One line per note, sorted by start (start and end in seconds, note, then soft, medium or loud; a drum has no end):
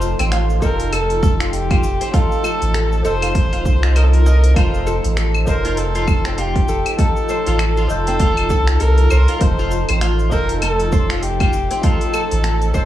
0.00 0.15 F1 loud
0.00 0.60 F3 medium
0.00 0.62 D#4 medium
0.00 0.60 A4 loud
0.00 0.28 C5 medium
0.00 0.64 C5 loud
0.00 cabasa medium
0.19 0.59 A1 loud
0.19 0.31 C4 medium
0.19 open hi-hat soft
0.19 cabasa soft
0.19 claves medium
0.32 0.61 F4 medium
0.32 finger snap medium
0.32 open hi-hat medium
0.32 cabasa soft
0.50 cabasa soft
0.60 1.80 F1 medium
0.60 2.10 F3 medium
0.60 2.11 D#4 medium
0.60 0.79 A4 medium
0.60 0.94 A#4 medium
0.60 2.12 C5 loud
0.60 kick medium
0.60 cabasa medium
0.80 open hi-hat soft
0.80 cabasa soft
0.93 1.53 A4 medium
0.93 1.21 A4 medium
0.93 open hi-hat medium
0.93 cabasa soft
0.93 claves medium
1.10 open hi-hat soft
1.10 cabasa soft
1.23 1.33 A4 medium
1.23 kick loud
1.23 cabasa medium
1.40 1.52 F4 medium
1.40 finger snap medium
1.40 open hi-hat soft
1.40 cabasa soft
1.53 2.16 G4 loud
1.53 open hi-hat medium
1.53 cabasa soft
1.71 1.83 F4 medium
1.71 kick loud
1.71 open hi-hat soft
1.71 claves medium
1.83 1.98 F1 medium
1.83 cabasa medium
2.01 2.13 C4 medium
2.01 open hi-hat soft
2.01 cabasa soft
2.11 3.00 F3 medium
2.11 3.02 D#4 medium
2.11 2.43 F4 medium
2.11 3.05 A4 medium
2.11 kick loud
2.11 open hi-hat soft
2.11 cabasa soft
2.15 3.02 A4 loud
2.32 cabasa soft
2.44 2.61 A4 medium
2.44 cabasa medium
2.44 claves medium
2.61 3.01 A1 medium
2.61 open hi-hat soft
2.61 cabasa soft
2.74 3.04 A4 medium
2.74 finger snap medium
2.74 open hi-hat medium
2.74 cabasa soft
2.92 cabasa soft
3.03 3.52 F1 medium
3.03 3.78 F3 medium
3.03 3.80 D#4 medium
3.03 3.15 A4 medium
3.03 3.98 C5 loud
3.03 cabasa medium
3.07 3.80 A4 loud
3.22 3.34 F4 medium
3.22 open hi-hat soft
3.22 cabasa soft
3.22 claves medium
3.35 kick loud
3.35 open hi-hat medium
3.35 cabasa soft
3.52 3.67 D#1 medium
3.52 3.65 F4 medium
3.52 open hi-hat soft
3.52 cabasa soft
3.65 4.53 C2 medium
3.65 kick medium
3.65 cabasa medium
3.81 4.52 F3 medium
3.81 4.53 D#4 medium
3.81 3.95 F4 medium
3.81 finger snap medium
3.81 open hi-hat soft
3.81 cabasa soft
3.85 4.54 C5 medium
3.96 4.05 A#4 medium
3.96 4.12 D#5 medium
3.96 open hi-hat medium
3.96 cabasa soft
3.96 claves medium
4.04 4.15 A4 medium
4.13 4.59 A#4 loud
4.13 open hi-hat soft
4.26 4.43 D#5 medium
4.26 cabasa medium
4.44 open hi-hat soft
4.44 cabasa soft
4.54 5.00 F1 loud
4.54 5.43 F3 loud
4.54 5.44 D#4 medium
4.54 4.85 F4 medium
4.54 5.17 C5 medium
4.54 kick loud
4.54 open hi-hat soft
4.54 cabasa soft
4.54 claves medium
4.58 5.45 A4 loud
4.74 cabasa soft
4.87 5.03 A4 medium
4.87 cabasa medium
5.04 5.44 A1 loud
5.04 open hi-hat soft
5.04 cabasa soft
5.17 5.46 A4 medium
5.17 finger snap medium
5.17 open hi-hat medium
5.17 cabasa soft
5.34 cabasa soft
5.34 claves medium
5.45 6.65 F1 medium
5.45 6.95 F3 loud
5.45 6.96 D#4 medium
5.45 5.80 A#4 medium
5.45 5.63 C5 medium
5.45 6.97 C5 loud
5.45 kick medium
5.45 cabasa medium
5.65 5.77 F4 medium
5.65 open hi-hat soft
5.65 cabasa soft
5.77 6.40 A4 medium
5.77 open hi-hat medium
5.77 cabasa soft
5.95 6.07 F4 medium
5.95 open hi-hat soft
5.95 cabasa soft
6.08 kick loud
6.08 cabasa medium
6.08 claves medium
6.25 6.38 C4 medium
6.25 finger snap medium
6.25 open hi-hat soft
6.25 cabasa soft
6.38 6.67 F4 medium
6.38 6.99 G4 medium
6.38 open hi-hat medium
6.38 cabasa soft
6.56 kick loud
6.56 open hi-hat soft
6.68 6.83 F1 medium
6.68 6.85 A4 medium
6.68 cabasa medium
6.86 open hi-hat soft
6.86 cabasa soft
6.86 claves medium
6.97 7.86 F3 medium
6.97 7.87 D#4 medium
6.97 7.28 A4 medium
6.97 7.86 A4 medium
6.97 kick loud
6.97 open hi-hat medium
6.97 cabasa soft
7.01 7.88 A4 loud
7.16 cabasa soft
7.29 7.45 C5 medium
7.29 cabasa medium
7.47 7.86 A1 loud
7.47 7.59 F4 medium
7.47 open hi-hat soft
7.47 cabasa soft
7.59 finger snap medium
7.59 open hi-hat medium
7.59 cabasa soft
7.59 claves medium
7.77 7.89 F4 medium
7.77 cabasa soft
7.87 8.52 F1 medium
7.87 9.37 F3 medium
7.87 9.38 D#4 medium
7.87 8.82 A4 loud
7.87 9.39 C5 loud
7.87 cabasa medium
8.07 8.19 C4 medium
8.07 open hi-hat soft
8.07 cabasa soft
8.20 8.49 F4 medium
8.20 kick medium
8.20 open hi-hat medium
8.20 cabasa soft
8.37 open hi-hat soft
8.37 cabasa soft
8.37 claves medium
8.50 8.76 C2 medium
8.50 8.67 A4 medium
8.50 kick medium
8.50 cabasa medium
8.67 finger snap medium
8.67 open hi-hat soft
8.67 cabasa soft
8.80 9.07 C2 medium
8.80 9.10 A4 medium
8.80 9.43 A#4 loud
8.80 open hi-hat medium
8.80 cabasa soft
8.98 open hi-hat soft
9.10 9.26 C2 loud
9.10 9.27 C5 medium
9.10 cabasa medium
9.10 claves medium
9.28 9.41 F4 medium
9.28 open hi-hat soft
9.28 cabasa soft
9.39 9.85 F1 loud
9.39 10.28 F3 loud
9.39 10.29 D#4 medium
9.39 10.02 C5 loud
9.39 kick loud
9.39 open hi-hat medium
9.39 cabasa soft
9.43 10.30 A4 loud
9.59 9.71 F4 medium
9.59 cabasa soft
9.71 cabasa medium
9.89 10.29 A1 medium
9.89 10.01 C4 medium
9.89 open hi-hat soft
9.89 cabasa soft
9.89 claves medium
10.01 10.31 F4 medium
10.01 finger snap medium
10.01 open hi-hat medium
10.01 cabasa soft
10.19 cabasa soft
10.30 11.50 F1 medium
10.30 11.79 F3 loud
10.30 11.80 D#4 medium
10.30 10.49 A4 medium
10.30 10.60 A#4 medium
10.30 11.81 C5 loud
10.30 kick medium
10.30 cabasa medium
10.49 open hi-hat soft
10.49 cabasa soft
10.62 11.24 A4 medium
10.62 10.91 A4 medium
10.62 open hi-hat medium
10.62 cabasa soft
10.62 claves medium
10.80 open hi-hat soft
10.80 cabasa soft
10.92 11.08 C5 medium
10.92 kick loud
10.92 cabasa medium
11.10 11.22 F4 medium
11.10 finger snap medium
11.10 open hi-hat soft
11.10 cabasa soft
11.23 11.85 G4 medium
11.23 open hi-hat medium
11.23 cabasa soft
11.40 11.53 F4 medium
11.40 kick loud
11.40 open hi-hat soft
11.40 claves medium
11.53 11.68 F1 medium
11.53 cabasa medium
11.71 11.83 C4 medium
11.71 open hi-hat soft
11.71 cabasa soft
11.81 12.70 F3 loud
11.81 12.71 D#4 medium
11.81 12.13 F4 medium
11.81 12.74 A4 medium
11.81 12.72 A4 loud
11.81 kick loud
11.81 open hi-hat medium
11.81 cabasa soft
12.01 open hi-hat soft
12.01 cabasa soft
12.14 12.30 A4 medium
12.14 cabasa medium
12.14 claves medium
12.31 12.71 A1 loud
12.31 open hi-hat soft
12.31 cabasa soft
12.44 12.73 A4 medium
12.44 finger snap medium
12.44 open hi-hat medium
12.44 cabasa soft
12.62 open hi-hat soft
12.62 cabasa soft
12.73 12.85 F1 medium
12.73 12.85 F3 medium
12.73 12.85 D#4 medium
12.73 12.85 A4 loud
12.73 12.85 C5 medium
12.73 kick medium
12.73 cabasa medium
12.77 12.85 C5 loud